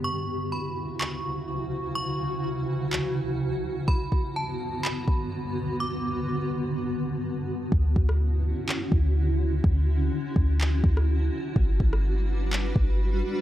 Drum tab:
CP |--------x-------|--------x-------|--------x-------|----------------|
SD |----------------|----------------|----------------|----------------|
BD |----------------|----------------|o-o-------o-----|----------------|

CP |--------x-------|--------x-------|--------x-------|
SD |---r------------|-----------r----|---r------------|
BD |o-o-------o-----|o-----o---o-----|o-o-------o-----|